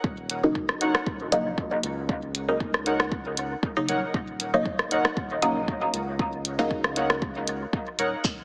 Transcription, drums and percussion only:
0.04 kick loud
0.30 closed hi-hat medium
0.55 kick loud
0.69 cross-stick medium
0.81 closed hi-hat medium
0.95 cross-stick medium
1.06 kick loud
1.32 closed hi-hat medium
1.58 kick loud
1.83 closed hi-hat medium
2.09 kick loud
2.35 closed hi-hat medium
2.60 kick loud
2.74 cross-stick medium
2.86 closed hi-hat medium
3.00 cross-stick medium
3.12 kick loud
3.37 closed hi-hat medium
3.63 kick loud
3.89 closed hi-hat medium
4.14 kick loud
4.40 closed hi-hat medium
4.65 kick loud
4.79 cross-stick medium
4.91 closed hi-hat medium
5.05 cross-stick medium
5.17 kick loud
5.42 closed hi-hat medium
5.68 kick loud
5.94 closed hi-hat medium
6.19 kick loud
6.45 closed hi-hat medium
6.71 kick loud
6.84 cross-stick medium
6.96 closed hi-hat medium
7.10 cross-stick medium
7.22 kick loud
7.47 closed hi-hat medium
7.73 kick loud
7.99 closed hi-hat medium
8.24 kick loud
8.24 shekere soft

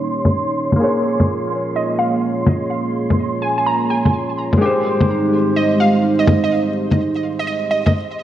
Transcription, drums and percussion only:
0.25 low bongo soft
0.72 low bongo soft
1.20 low bongo soft
2.47 low bongo medium
3.10 low bongo soft
4.05 low bongo soft
4.53 low bongo soft
5.00 low bongo soft
6.28 low bongo medium
6.91 low bongo soft
7.86 low bongo soft

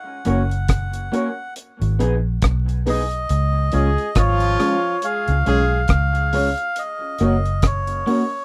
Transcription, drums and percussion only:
0.25 closed hi-hat medium
0.51 closed hi-hat soft
0.68 kick loud
0.68 cross-stick loud
0.68 closed hi-hat loud
0.93 closed hi-hat medium
1.14 closed hi-hat medium
1.56 closed hi-hat loud
1.82 closed hi-hat medium
2.00 closed hi-hat medium
2.42 kick loud
2.42 cross-stick loud
2.42 closed hi-hat medium
2.69 closed hi-hat soft
2.87 open hi-hat medium
3.11 closed hi-hat soft
3.29 closed hi-hat medium
3.72 closed hi-hat medium
3.98 closed hi-hat soft
4.15 kick loud
4.15 cross-stick loud
4.15 closed hi-hat loud
4.40 closed hi-hat medium
4.60 cross-stick medium
4.60 closed hi-hat medium
5.02 closed hi-hat loud
5.28 closed hi-hat medium
5.46 closed hi-hat medium
5.88 kick loud
5.88 cross-stick loud
5.88 closed hi-hat medium
6.15 closed hi-hat soft
6.33 open hi-hat medium
6.58 closed hi-hat soft
6.76 closed hi-hat loud
7.18 closed hi-hat medium
7.45 closed hi-hat soft
7.62 kick loud
7.62 cross-stick loud
7.62 closed hi-hat loud
7.87 closed hi-hat medium
8.07 open hi-hat medium

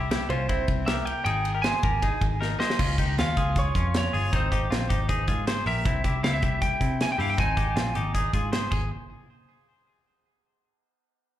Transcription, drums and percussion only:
0.11 snare loud
0.11 ride medium
0.30 ride medium
0.49 kick medium
0.49 ride medium
0.68 kick medium
0.68 ride medium
0.87 snare loud
0.87 ride medium
1.07 ride medium
1.26 ride medium
1.45 ride medium
1.64 snare loud
1.64 ride medium
1.83 kick loud
1.83 ride medium
2.02 kick medium
2.02 ride medium
2.21 kick medium
2.21 ride medium
2.42 snare medium
2.60 snare medium
2.70 snare loud
2.79 kick loud
2.79 crash loud
2.98 kick medium
2.98 closed hi-hat medium
3.19 snare loud
3.19 closed hi-hat medium
3.37 kick medium
3.37 closed hi-hat medium
3.56 kick medium
3.56 closed hi-hat medium
3.75 kick medium
3.75 closed hi-hat medium
3.94 snare loud
3.94 closed hi-hat medium
4.14 open hi-hat medium
4.33 kick loud
4.33 closed hi-hat loud
4.52 kick medium
4.52 closed hi-hat medium
4.72 snare loud
4.72 closed hi-hat medium
4.90 kick medium
4.90 closed hi-hat medium
5.09 kick medium
5.09 closed hi-hat medium
5.28 kick medium
5.28 closed hi-hat medium
5.47 snare loud
5.47 closed hi-hat medium
5.66 open hi-hat medium
5.85 kick loud
5.85 closed hi-hat loud
6.04 kick medium
6.04 closed hi-hat medium
6.24 snare loud
6.24 closed hi-hat medium
6.42 kick medium
6.42 closed hi-hat medium
6.62 kick medium
6.62 closed hi-hat medium
6.81 kick medium
6.81 closed hi-hat medium
7.01 snare loud
7.01 closed hi-hat medium
7.20 open hi-hat medium
7.38 kick loud
7.38 closed hi-hat medium
7.57 kick medium
7.57 closed hi-hat medium
7.77 snare loud
7.77 closed hi-hat medium
7.95 closed hi-hat medium
8.15 kick medium
8.15 closed hi-hat medium
8.33 kick medium
8.33 closed hi-hat medium
8.53 snare loud
8.53 closed hi-hat medium
8.72 kick medium
8.72 crash medium

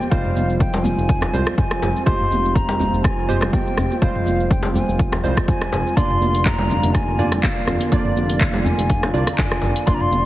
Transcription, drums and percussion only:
0.01 shaker soft
0.11 kick loud
0.11 high conga medium
0.11 shaker medium
0.25 mid tom medium
0.35 high conga medium
0.35 shaker loud
0.50 shaker soft
0.60 kick loud
0.60 shaker medium
0.73 djembe slap loud
0.73 low conga loud
0.73 shaker soft
0.84 high conga loud
0.84 djembe tone medium
0.84 low conga loud
0.84 djembe bass medium
0.84 shaker medium
0.98 shaker soft
1.09 kick loud
1.09 shaker medium
1.21 cross-stick medium
1.21 djembe slap loud
1.21 djembe bass loud
1.34 djembe tone medium
1.34 shaker medium
1.47 cross-stick loud
1.47 high conga medium
1.47 djembe tone medium
1.47 shaker soft
1.58 kick loud
1.58 mid tom medium
1.58 djembe tone medium
1.58 shaker medium
1.71 cross-stick loud
1.71 djembe slap medium
1.71 shaker soft
1.82 mid tom medium
1.82 djembe slap loud
1.82 shaker medium
1.96 shaker soft
2.06 kick loud
2.06 high conga medium
2.06 shaker medium
2.20 mid tom medium
2.31 high conga medium
2.31 shaker loud
2.45 shaker soft
2.55 kick loud
2.55 shaker medium
2.68 djembe slap loud
2.68 low conga loud
2.68 shaker soft
2.79 high conga loud
2.79 djembe tone medium
2.79 low conga loud
2.79 djembe bass medium
2.79 shaker loud
2.94 shaker soft
3.04 kick loud
3.04 cross-stick medium
3.04 djembe tone medium
3.04 shaker medium
3.28 mid tom medium
3.28 high conga medium
3.28 shaker loud
3.41 cross-stick loud
3.41 djembe slap medium
3.41 djembe tone medium
3.41 low conga loud
3.41 shaker soft
3.53 kick loud
3.53 high conga loud
3.53 shaker medium
3.67 shaker soft
3.78 cross-stick medium
3.78 djembe bass medium
3.78 shaker medium
3.91 high conga medium
3.91 shaker soft
4.02 kick loud
4.02 high conga medium
4.02 shaker medium
4.15 mid tom medium
4.26 high conga medium
4.26 shaker loud
4.40 shaker soft
4.51 kick loud
4.51 shaker medium
4.63 djembe slap loud
4.63 low conga loud
4.63 shaker soft
4.74 djembe tone medium
4.74 high conga loud
4.74 djembe bass medium
4.74 low conga loud
4.74 shaker medium
4.89 shaker soft
4.99 kick loud
4.99 shaker medium
5.12 cross-stick medium
5.12 djembe slap loud
5.12 djembe bass medium
5.23 djembe tone medium
5.23 shaker medium
5.37 kick medium
5.37 cross-stick medium
5.37 high conga medium
5.37 djembe tone medium
5.37 shaker soft
5.48 kick loud
5.48 mid tom medium
5.48 djembe tone medium
5.48 shaker medium
5.61 cross-stick medium
5.61 djembe slap medium
5.61 shaker soft
5.72 mid tom medium
5.72 djembe slap loud
5.72 shaker medium
5.87 shaker soft
5.97 kick loud
5.97 closed hi-hat soft
5.97 high conga medium
5.97 shaker medium
6.10 mid tom medium
6.21 high conga medium
6.21 shaker medium
6.35 closed hi-hat medium
6.35 shaker soft
6.45 kick loud
6.45 clap loud
6.45 closed hi-hat soft
6.45 shaker medium
6.58 djembe slap medium
6.58 low conga loud
6.58 shaker soft
6.69 djembe tone medium
6.69 high conga medium
6.69 djembe bass medium
6.69 low conga medium
6.69 shaker medium
6.83 closed hi-hat medium
6.83 shaker soft
6.94 kick loud
6.94 cross-stick medium
6.94 closed hi-hat soft
6.94 djembe tone medium
6.94 shaker medium
7.19 mid tom medium
7.19 high conga medium
7.19 shaker medium
7.32 cross-stick medium
7.32 closed hi-hat medium
7.32 djembe slap medium
7.32 djembe tone medium
7.32 low conga loud
7.32 shaker soft
7.43 kick loud
7.43 clap loud
7.43 closed hi-hat soft
7.43 high conga loud
7.43 shaker medium
7.57 shaker soft
7.67 cross-stick medium
7.67 djembe bass medium
7.67 shaker loud
7.80 closed hi-hat medium
7.80 high conga medium
7.80 shaker soft
7.91 kick loud
7.91 closed hi-hat soft
7.91 high conga medium
7.91 shaker soft
8.05 mid tom medium
8.16 high conga medium
8.16 shaker medium
8.30 closed hi-hat medium
8.30 shaker soft
8.41 kick loud
8.41 clap loud
8.41 closed hi-hat soft
8.41 shaker medium
8.54 djembe slap medium
8.54 low conga loud
8.54 shaker soft
8.65 djembe tone medium
8.65 high conga loud
8.65 djembe bass medium
8.65 low conga loud
8.65 shaker medium
8.79 closed hi-hat medium
8.79 shaker soft
8.90 kick loud
8.90 closed hi-hat soft
8.90 shaker soft
9.03 cross-stick medium
9.03 djembe slap medium
9.03 djembe bass medium
9.13 djembe tone medium
9.13 shaker medium
9.27 cross-stick medium
9.27 closed hi-hat medium
9.27 djembe tone medium
9.27 high conga medium
9.27 shaker soft
9.38 kick loud
9.38 clap loud
9.38 closed hi-hat soft
9.38 mid tom medium
9.38 djembe tone medium
9.38 shaker medium
9.51 cross-stick medium
9.51 djembe slap medium
9.51 shaker soft
9.62 mid tom medium
9.62 djembe slap medium
9.62 shaker medium
9.76 closed hi-hat medium
9.76 shaker soft
9.87 kick loud
9.87 closed hi-hat soft
9.87 high conga medium
9.87 shaker soft
10.01 mid tom medium
10.11 high conga medium
10.11 shaker medium

